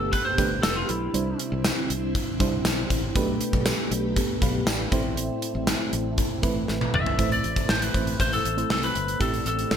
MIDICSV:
0, 0, Header, 1, 6, 480
1, 0, Start_track
1, 0, Tempo, 504202
1, 1084, Time_signature, 4, 2, 24, 8
1, 9299, End_track
2, 0, Start_track
2, 0, Title_t, "Lead electric guitar"
2, 0, Program_c, 0, 29
2, 0, Note_on_c, 0, 69, 95
2, 100, Note_off_c, 0, 69, 0
2, 121, Note_on_c, 0, 71, 103
2, 234, Note_off_c, 0, 71, 0
2, 238, Note_on_c, 0, 72, 107
2, 592, Note_off_c, 0, 72, 0
2, 596, Note_on_c, 0, 69, 102
2, 723, Note_on_c, 0, 65, 84
2, 724, Note_off_c, 0, 69, 0
2, 844, Note_off_c, 0, 65, 0
2, 844, Note_on_c, 0, 64, 77
2, 1324, Note_off_c, 0, 64, 0
2, 6620, Note_on_c, 0, 76, 105
2, 6967, Note_off_c, 0, 76, 0
2, 6971, Note_on_c, 0, 74, 98
2, 7328, Note_on_c, 0, 72, 89
2, 7338, Note_off_c, 0, 74, 0
2, 7443, Note_off_c, 0, 72, 0
2, 7443, Note_on_c, 0, 71, 92
2, 7807, Note_off_c, 0, 71, 0
2, 7811, Note_on_c, 0, 72, 89
2, 7920, Note_off_c, 0, 72, 0
2, 7933, Note_on_c, 0, 69, 90
2, 8287, Note_off_c, 0, 69, 0
2, 8298, Note_on_c, 0, 69, 89
2, 8416, Note_off_c, 0, 69, 0
2, 8416, Note_on_c, 0, 71, 89
2, 8769, Note_off_c, 0, 71, 0
2, 8773, Note_on_c, 0, 69, 87
2, 9005, Note_off_c, 0, 69, 0
2, 9016, Note_on_c, 0, 69, 84
2, 9299, Note_off_c, 0, 69, 0
2, 9299, End_track
3, 0, Start_track
3, 0, Title_t, "FM electric piano"
3, 0, Program_c, 1, 5
3, 0, Control_c, 1, 64, 127
3, 0, Note_on_c, 1, 43, 64
3, 0, Note_on_c, 1, 57, 76
3, 0, Note_on_c, 1, 62, 71
3, 0, Note_on_c, 1, 67, 69
3, 0, Note_on_c, 1, 71, 80
3, 359, Note_off_c, 1, 57, 0
3, 359, Note_on_c, 1, 57, 72
3, 364, Note_off_c, 1, 62, 0
3, 364, Note_on_c, 1, 62, 66
3, 367, Note_off_c, 1, 67, 0
3, 367, Note_on_c, 1, 67, 66
3, 373, Note_off_c, 1, 71, 0
3, 373, Note_on_c, 1, 71, 74
3, 846, Note_off_c, 1, 57, 0
3, 848, Note_off_c, 1, 62, 0
3, 850, Note_off_c, 1, 67, 0
3, 853, Note_off_c, 1, 71, 0
3, 1078, Note_on_c, 1, 55, 80
3, 1081, Note_on_c, 1, 62, 69
3, 1082, Note_on_c, 1, 48, 69
3, 1086, Note_on_c, 1, 64, 74
3, 1090, Note_on_c, 1, 72, 79
3, 1097, Control_c, 1, 64, 0
3, 1103, Note_off_c, 1, 43, 0
3, 1257, Control_c, 1, 64, 127
3, 1727, Note_off_c, 1, 55, 0
3, 1728, Note_off_c, 1, 62, 0
3, 1731, Note_off_c, 1, 64, 0
3, 1733, Note_off_c, 1, 72, 0
3, 1765, Note_off_c, 1, 48, 0
3, 2279, Note_on_c, 1, 55, 85
3, 2283, Note_on_c, 1, 62, 77
3, 2287, Note_on_c, 1, 64, 77
3, 2291, Note_on_c, 1, 72, 93
3, 2766, Note_off_c, 1, 55, 0
3, 2768, Note_off_c, 1, 62, 0
3, 2770, Note_off_c, 1, 64, 0
3, 2772, Note_off_c, 1, 72, 0
3, 3001, Note_on_c, 1, 57, 96
3, 3005, Note_on_c, 1, 62, 82
3, 3006, Note_on_c, 1, 47, 82
3, 3006, Note_on_c, 1, 67, 85
3, 3011, Note_on_c, 1, 71, 104
3, 3017, Control_c, 1, 64, 0
3, 3157, Control_c, 1, 64, 127
3, 3648, Note_off_c, 1, 57, 0
3, 3650, Note_off_c, 1, 62, 0
3, 3651, Note_off_c, 1, 67, 0
3, 3653, Note_off_c, 1, 71, 0
3, 3687, Note_off_c, 1, 47, 0
3, 4209, Note_on_c, 1, 83, 66
3, 4213, Note_on_c, 1, 77, 53
3, 4435, Note_off_c, 1, 83, 0
3, 4437, Note_off_c, 1, 77, 0
3, 4450, Note_on_c, 1, 79, 67
3, 4454, Note_on_c, 1, 74, 57
3, 4681, Note_on_c, 1, 57, 94
3, 4687, Note_on_c, 1, 45, 77
3, 4688, Note_on_c, 1, 60, 85
3, 4688, Note_on_c, 1, 64, 89
3, 4694, Note_on_c, 1, 72, 100
3, 4697, Control_c, 1, 64, 0
3, 4842, Control_c, 1, 64, 127
3, 4903, Note_off_c, 1, 79, 0
3, 4905, Note_off_c, 1, 74, 0
3, 5368, Note_off_c, 1, 45, 0
3, 5451, Note_off_c, 1, 57, 0
3, 5454, Note_off_c, 1, 60, 0
3, 5454, Note_off_c, 1, 64, 0
3, 5457, Note_off_c, 1, 72, 0
3, 6116, Note_on_c, 1, 57, 82
3, 6121, Note_on_c, 1, 60, 72
3, 6126, Note_on_c, 1, 64, 74
3, 6127, Note_on_c, 1, 71, 97
3, 6604, Note_off_c, 1, 57, 0
3, 6607, Note_off_c, 1, 60, 0
3, 6609, Note_off_c, 1, 64, 0
3, 6610, Note_off_c, 1, 71, 0
3, 6838, Note_on_c, 1, 57, 70
3, 6841, Note_on_c, 1, 60, 64
3, 6842, Note_on_c, 1, 45, 62
3, 6846, Note_on_c, 1, 64, 66
3, 6850, Note_on_c, 1, 72, 75
3, 6859, Control_c, 1, 64, 0
3, 7011, Control_c, 1, 64, 127
3, 7326, Note_off_c, 1, 57, 0
3, 7327, Note_off_c, 1, 60, 0
3, 7329, Note_off_c, 1, 64, 0
3, 7332, Note_off_c, 1, 72, 0
3, 7525, Note_off_c, 1, 45, 0
3, 7558, Note_on_c, 1, 57, 69
3, 7561, Note_on_c, 1, 60, 61
3, 7565, Note_on_c, 1, 64, 62
3, 7568, Note_on_c, 1, 72, 76
3, 7965, Note_off_c, 1, 57, 0
3, 7966, Note_off_c, 1, 60, 0
3, 7968, Note_off_c, 1, 64, 0
3, 7970, Note_off_c, 1, 72, 0
3, 8157, Note_on_c, 1, 57, 68
3, 8159, Note_on_c, 1, 60, 62
3, 8164, Note_on_c, 1, 64, 64
3, 8166, Note_on_c, 1, 72, 77
3, 8564, Note_off_c, 1, 57, 0
3, 8565, Note_off_c, 1, 60, 0
3, 8568, Note_off_c, 1, 64, 0
3, 8569, Note_off_c, 1, 72, 0
3, 8753, Note_on_c, 1, 57, 75
3, 8757, Note_on_c, 1, 60, 66
3, 8759, Note_on_c, 1, 45, 65
3, 8761, Note_on_c, 1, 64, 67
3, 8764, Note_on_c, 1, 67, 82
3, 9243, Note_off_c, 1, 57, 0
3, 9245, Note_off_c, 1, 60, 0
3, 9247, Note_off_c, 1, 64, 0
3, 9248, Note_off_c, 1, 67, 0
3, 9299, Note_off_c, 1, 45, 0
3, 9299, End_track
4, 0, Start_track
4, 0, Title_t, "String machine"
4, 0, Program_c, 2, 50
4, 0, Note_on_c, 2, 47, 81
4, 0, Note_on_c, 2, 57, 75
4, 0, Note_on_c, 2, 67, 90
4, 1064, Note_off_c, 2, 67, 0
4, 1065, Note_off_c, 2, 47, 0
4, 1065, Note_off_c, 2, 57, 0
4, 1082, Note_on_c, 2, 64, 90
4, 1084, Note_on_c, 2, 60, 77
4, 1085, Note_on_c, 2, 50, 85
4, 2984, Note_off_c, 2, 64, 0
4, 2985, Note_off_c, 2, 60, 0
4, 2986, Note_off_c, 2, 50, 0
4, 3001, Note_on_c, 2, 47, 85
4, 3001, Note_on_c, 2, 67, 88
4, 3004, Note_on_c, 2, 57, 73
4, 4666, Note_off_c, 2, 47, 0
4, 4666, Note_off_c, 2, 67, 0
4, 4667, Note_off_c, 2, 57, 0
4, 4685, Note_on_c, 2, 57, 77
4, 4687, Note_on_c, 2, 48, 77
4, 4688, Note_on_c, 2, 64, 91
4, 6823, Note_off_c, 2, 57, 0
4, 6824, Note_off_c, 2, 48, 0
4, 6824, Note_off_c, 2, 64, 0
4, 6845, Note_on_c, 2, 48, 81
4, 6848, Note_on_c, 2, 64, 84
4, 6849, Note_on_c, 2, 57, 70
4, 8747, Note_off_c, 2, 64, 0
4, 8757, Note_on_c, 2, 62, 83
4, 9299, Note_off_c, 2, 48, 0
4, 9299, Note_off_c, 2, 57, 0
4, 9299, Note_off_c, 2, 62, 0
4, 9299, End_track
5, 0, Start_track
5, 0, Title_t, "Fretless electric bass"
5, 0, Program_c, 3, 35
5, 0, Note_on_c, 3, 31, 103
5, 142, Note_off_c, 3, 31, 0
5, 366, Note_on_c, 3, 31, 97
5, 538, Note_off_c, 3, 31, 0
5, 607, Note_on_c, 3, 29, 94
5, 779, Note_off_c, 3, 29, 0
5, 847, Note_on_c, 3, 35, 87
5, 1019, Note_off_c, 3, 35, 0
5, 1086, Note_on_c, 3, 36, 106
5, 1258, Note_off_c, 3, 36, 0
5, 1445, Note_on_c, 3, 36, 104
5, 1618, Note_off_c, 3, 36, 0
5, 1806, Note_on_c, 3, 36, 93
5, 2065, Note_off_c, 3, 36, 0
5, 2286, Note_on_c, 3, 36, 101
5, 2459, Note_off_c, 3, 36, 0
5, 2523, Note_on_c, 3, 35, 99
5, 2696, Note_off_c, 3, 35, 0
5, 2765, Note_on_c, 3, 33, 95
5, 2937, Note_off_c, 3, 33, 0
5, 3004, Note_on_c, 3, 35, 108
5, 3177, Note_off_c, 3, 35, 0
5, 3362, Note_on_c, 3, 35, 93
5, 3536, Note_off_c, 3, 35, 0
5, 3723, Note_on_c, 3, 35, 109
5, 3983, Note_off_c, 3, 35, 0
5, 4206, Note_on_c, 3, 35, 107
5, 4378, Note_off_c, 3, 35, 0
5, 4444, Note_on_c, 3, 33, 84
5, 4617, Note_off_c, 3, 33, 0
5, 4683, Note_on_c, 3, 33, 98
5, 5029, Note_off_c, 3, 33, 0
5, 5281, Note_on_c, 3, 33, 95
5, 5455, Note_off_c, 3, 33, 0
5, 5641, Note_on_c, 3, 33, 95
5, 5902, Note_off_c, 3, 33, 0
5, 6124, Note_on_c, 3, 33, 100
5, 6297, Note_off_c, 3, 33, 0
5, 6358, Note_on_c, 3, 33, 82
5, 6533, Note_off_c, 3, 33, 0
5, 6602, Note_on_c, 3, 31, 90
5, 6776, Note_off_c, 3, 31, 0
5, 6842, Note_on_c, 3, 33, 101
5, 7016, Note_off_c, 3, 33, 0
5, 7082, Note_on_c, 3, 33, 81
5, 7256, Note_off_c, 3, 33, 0
5, 7319, Note_on_c, 3, 33, 98
5, 7494, Note_off_c, 3, 33, 0
5, 7563, Note_on_c, 3, 33, 100
5, 7736, Note_off_c, 3, 33, 0
5, 7803, Note_on_c, 3, 33, 109
5, 7976, Note_off_c, 3, 33, 0
5, 8041, Note_on_c, 3, 33, 94
5, 8215, Note_off_c, 3, 33, 0
5, 8278, Note_on_c, 3, 36, 82
5, 8453, Note_off_c, 3, 36, 0
5, 8521, Note_on_c, 3, 31, 86
5, 8695, Note_off_c, 3, 31, 0
5, 8762, Note_on_c, 3, 33, 100
5, 8936, Note_off_c, 3, 33, 0
5, 9002, Note_on_c, 3, 33, 89
5, 9176, Note_off_c, 3, 33, 0
5, 9242, Note_on_c, 3, 33, 93
5, 9299, Note_off_c, 3, 33, 0
5, 9299, End_track
6, 0, Start_track
6, 0, Title_t, "Drums"
6, 121, Note_on_c, 9, 42, 74
6, 123, Note_on_c, 9, 36, 88
6, 216, Note_off_c, 9, 42, 0
6, 219, Note_off_c, 9, 36, 0
6, 365, Note_on_c, 9, 36, 99
6, 365, Note_on_c, 9, 42, 75
6, 460, Note_off_c, 9, 36, 0
6, 460, Note_off_c, 9, 42, 0
6, 604, Note_on_c, 9, 38, 117
6, 605, Note_on_c, 9, 54, 63
6, 606, Note_on_c, 9, 42, 89
6, 699, Note_off_c, 9, 38, 0
6, 701, Note_off_c, 9, 42, 0
6, 701, Note_off_c, 9, 54, 0
6, 846, Note_on_c, 9, 42, 77
6, 941, Note_off_c, 9, 42, 0
6, 1088, Note_on_c, 9, 42, 84
6, 1183, Note_off_c, 9, 42, 0
6, 1327, Note_on_c, 9, 42, 83
6, 1422, Note_off_c, 9, 42, 0
6, 1566, Note_on_c, 9, 38, 109
6, 1566, Note_on_c, 9, 42, 79
6, 1569, Note_on_c, 9, 54, 59
6, 1661, Note_off_c, 9, 42, 0
6, 1662, Note_off_c, 9, 38, 0
6, 1664, Note_off_c, 9, 54, 0
6, 1810, Note_on_c, 9, 42, 81
6, 1905, Note_off_c, 9, 42, 0
6, 2047, Note_on_c, 9, 36, 95
6, 2047, Note_on_c, 9, 42, 75
6, 2142, Note_off_c, 9, 36, 0
6, 2142, Note_off_c, 9, 42, 0
6, 2286, Note_on_c, 9, 42, 76
6, 2287, Note_on_c, 9, 36, 100
6, 2381, Note_off_c, 9, 42, 0
6, 2382, Note_off_c, 9, 36, 0
6, 2522, Note_on_c, 9, 38, 118
6, 2524, Note_on_c, 9, 42, 91
6, 2524, Note_on_c, 9, 54, 64
6, 2617, Note_off_c, 9, 38, 0
6, 2619, Note_off_c, 9, 54, 0
6, 2620, Note_off_c, 9, 42, 0
6, 2765, Note_on_c, 9, 36, 85
6, 2766, Note_on_c, 9, 42, 78
6, 2860, Note_off_c, 9, 36, 0
6, 2862, Note_off_c, 9, 42, 0
6, 3003, Note_on_c, 9, 42, 77
6, 3004, Note_on_c, 9, 36, 111
6, 3099, Note_off_c, 9, 42, 0
6, 3100, Note_off_c, 9, 36, 0
6, 3242, Note_on_c, 9, 42, 84
6, 3337, Note_off_c, 9, 42, 0
6, 3363, Note_on_c, 9, 36, 96
6, 3458, Note_off_c, 9, 36, 0
6, 3480, Note_on_c, 9, 42, 89
6, 3481, Note_on_c, 9, 38, 112
6, 3484, Note_on_c, 9, 54, 60
6, 3576, Note_off_c, 9, 38, 0
6, 3576, Note_off_c, 9, 42, 0
6, 3579, Note_off_c, 9, 54, 0
6, 3728, Note_on_c, 9, 42, 78
6, 3823, Note_off_c, 9, 42, 0
6, 3964, Note_on_c, 9, 42, 79
6, 3965, Note_on_c, 9, 36, 93
6, 4059, Note_off_c, 9, 42, 0
6, 4060, Note_off_c, 9, 36, 0
6, 4206, Note_on_c, 9, 36, 95
6, 4207, Note_on_c, 9, 42, 75
6, 4302, Note_off_c, 9, 36, 0
6, 4303, Note_off_c, 9, 42, 0
6, 4444, Note_on_c, 9, 38, 111
6, 4446, Note_on_c, 9, 42, 90
6, 4446, Note_on_c, 9, 54, 67
6, 4539, Note_off_c, 9, 38, 0
6, 4541, Note_off_c, 9, 42, 0
6, 4541, Note_off_c, 9, 54, 0
6, 4684, Note_on_c, 9, 36, 99
6, 4684, Note_on_c, 9, 42, 71
6, 4779, Note_off_c, 9, 36, 0
6, 4780, Note_off_c, 9, 42, 0
6, 4925, Note_on_c, 9, 42, 82
6, 5020, Note_off_c, 9, 42, 0
6, 5162, Note_on_c, 9, 42, 84
6, 5258, Note_off_c, 9, 42, 0
6, 5399, Note_on_c, 9, 42, 87
6, 5400, Note_on_c, 9, 38, 107
6, 5403, Note_on_c, 9, 54, 61
6, 5494, Note_off_c, 9, 42, 0
6, 5495, Note_off_c, 9, 38, 0
6, 5498, Note_off_c, 9, 54, 0
6, 5644, Note_on_c, 9, 42, 76
6, 5739, Note_off_c, 9, 42, 0
6, 5881, Note_on_c, 9, 42, 77
6, 5883, Note_on_c, 9, 36, 91
6, 5976, Note_off_c, 9, 42, 0
6, 5979, Note_off_c, 9, 36, 0
6, 6123, Note_on_c, 9, 42, 74
6, 6124, Note_on_c, 9, 36, 97
6, 6218, Note_off_c, 9, 42, 0
6, 6220, Note_off_c, 9, 36, 0
6, 6363, Note_on_c, 9, 38, 57
6, 6458, Note_off_c, 9, 38, 0
6, 6486, Note_on_c, 9, 48, 69
6, 6581, Note_off_c, 9, 48, 0
6, 6605, Note_on_c, 9, 45, 91
6, 6701, Note_off_c, 9, 45, 0
6, 6725, Note_on_c, 9, 43, 88
6, 6821, Note_off_c, 9, 43, 0
6, 6843, Note_on_c, 9, 36, 109
6, 6845, Note_on_c, 9, 42, 77
6, 6938, Note_off_c, 9, 36, 0
6, 6940, Note_off_c, 9, 42, 0
6, 6967, Note_on_c, 9, 42, 42
6, 7062, Note_off_c, 9, 42, 0
6, 7083, Note_on_c, 9, 42, 76
6, 7179, Note_off_c, 9, 42, 0
6, 7201, Note_on_c, 9, 36, 93
6, 7204, Note_on_c, 9, 42, 52
6, 7296, Note_off_c, 9, 36, 0
6, 7299, Note_off_c, 9, 42, 0
6, 7321, Note_on_c, 9, 38, 104
6, 7416, Note_off_c, 9, 38, 0
6, 7445, Note_on_c, 9, 42, 55
6, 7540, Note_off_c, 9, 42, 0
6, 7563, Note_on_c, 9, 36, 85
6, 7566, Note_on_c, 9, 42, 73
6, 7658, Note_off_c, 9, 36, 0
6, 7661, Note_off_c, 9, 42, 0
6, 7685, Note_on_c, 9, 42, 50
6, 7780, Note_off_c, 9, 42, 0
6, 7804, Note_on_c, 9, 36, 85
6, 7808, Note_on_c, 9, 42, 72
6, 7900, Note_off_c, 9, 36, 0
6, 7903, Note_off_c, 9, 42, 0
6, 7929, Note_on_c, 9, 42, 52
6, 8024, Note_off_c, 9, 42, 0
6, 8048, Note_on_c, 9, 42, 73
6, 8143, Note_off_c, 9, 42, 0
6, 8168, Note_on_c, 9, 42, 43
6, 8263, Note_off_c, 9, 42, 0
6, 8285, Note_on_c, 9, 38, 104
6, 8380, Note_off_c, 9, 38, 0
6, 8406, Note_on_c, 9, 42, 60
6, 8501, Note_off_c, 9, 42, 0
6, 8524, Note_on_c, 9, 42, 71
6, 8620, Note_off_c, 9, 42, 0
6, 8648, Note_on_c, 9, 42, 52
6, 8743, Note_off_c, 9, 42, 0
6, 8764, Note_on_c, 9, 36, 110
6, 8766, Note_on_c, 9, 42, 72
6, 8859, Note_off_c, 9, 36, 0
6, 8862, Note_off_c, 9, 42, 0
6, 8889, Note_on_c, 9, 42, 42
6, 8984, Note_off_c, 9, 42, 0
6, 9005, Note_on_c, 9, 42, 80
6, 9101, Note_off_c, 9, 42, 0
6, 9127, Note_on_c, 9, 42, 55
6, 9222, Note_off_c, 9, 42, 0
6, 9246, Note_on_c, 9, 38, 108
6, 9299, Note_off_c, 9, 38, 0
6, 9299, End_track
0, 0, End_of_file